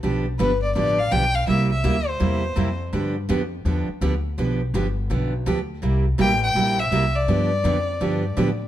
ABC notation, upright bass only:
X:1
M:4/4
L:1/8
Q:"Swing" 1/4=165
K:Gmix
V:1 name="Upright bass" clef=bass
B,,,2 G,,,2 A,,,2 B,,,2 | C,,2 D,,2 E,,2 F,,2 | G,,2 F,,2 E,, z D,,2 | B,,,2 G,,,2 B,,,2 D,,2 |
C,,2 A,,,2 _B,,,2 C,,2 | G,,2 F,,2 G,,2 A,,2 |]